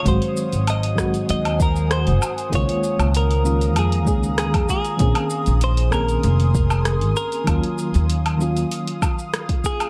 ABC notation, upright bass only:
X:1
M:4/4
L:1/16
Q:1/4=97
K:Bbm
V:1 name="Upright bass" clef=bass
A,,, z2 A,,,4 z E,,4- E,, G,,, z2 | D,, z2 D,,4- D,, F,,2 D,,3 F,, z2 | B,,, z2 B,,,4 z F,,,4- F,,, A,,, z2 | E,, z2 E,,4 z8 z |]